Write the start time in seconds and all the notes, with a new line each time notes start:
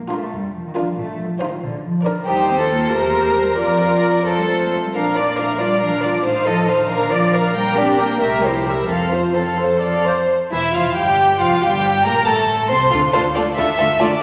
Already playing: A#1
0.10 A3 D4 F4 A#4
0.32 F1 G3
0.54 F3
0.66 D#3
0.75 F3 D4 F4 A#4
0.97 A1 A3
1.19 F3
1.40 D#3 D#4 F4 C5
1.61 A#1 D3
1.84 F3
2.04 D4 A#4 D5
2.26 D#2 G3 D#4 G4 C5
2.48 C4
2.59 F4 A4
2.70 A#3
2.91 E2 A3 G4 A#4 C5
3.36 G3
3.58 F2 F3 F4 A#4 D5
4.26 F4 A4 C5
4.39 G3
4.49 A3
4.62 A#3
4.72 A3
4.84 G3
4.94 A#1 F3 D4 A#4 F5
5.17 A#3 F4 D5
5.38 A3 D4 A#4 F5
5.60 G3 F4 D5
5.82 F3 D4 A#4 F5
5.94 D#3
6.03 F3 F4 D5
6.24 A1 A3 D#4 C5 F5
6.46 F3 F4 A4 D#5
6.68 D#3 D#4 C5 F5
6.90 A#1 D3 D4 A#4 F5
7.11 F3 F4 D5
7.33 D4 A#4 F5
7.55 G3 A#3 A#4 G5
7.76 C4 D4 G4 D5
7.98 A#3 A#4 G5
8.20 C2 A3 G4 A#4 E5
8.43 F3 E4 G4 C5
8.66 G3 G4 A#4 E5
8.89 F2 F3 C4 A4 F5
9.12 F4 C5
9.36 C4 A4 F5
9.59 A4 C5
9.82 A4 D5 F5
10.05 C5
10.52 E1 E2 E3 E4 E5
10.73 F1 F2 F3 F4 F5
10.96 G1 G2 G3 G4 G5
11.39 F1 F2 F3 F4 F5
11.62 G1 G2 G3 G4 G5
12.05 A#1 A#2 A#3 A#4 A#5
12.26 A1 A2 A3 A4 A5
12.69 C2 C3 C4 C5 C6
12.91 D2 A3 D4 F4 A4
13.13 D2 A3 D4 F4 A4 C5
13.35 D2 A3 D4 F4 A4 D5
13.57 D2 A3 D4 F4 A4 E5
13.78 D2 A3 D4 F4 A4
14.00 D2 A3 D4 F4 A4 D5